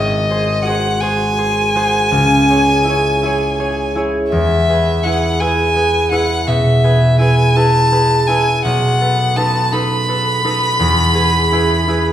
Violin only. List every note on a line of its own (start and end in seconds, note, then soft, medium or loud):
0.00 0.64 D#5 soft
0.62 1.02 F#5 soft
1.00 3.95 G#5 medium
4.30 5.05 E5 soft
5.04 5.42 F#5 soft
5.40 6.11 G#5 medium
6.11 6.49 F#5 soft
6.47 7.19 E5 soft
7.19 7.58 G#5 soft
7.56 8.29 A5 medium
8.27 8.64 G#5 medium
8.65 9.38 F#5 medium
9.36 9.74 A5 medium
9.72 12.13 B5 medium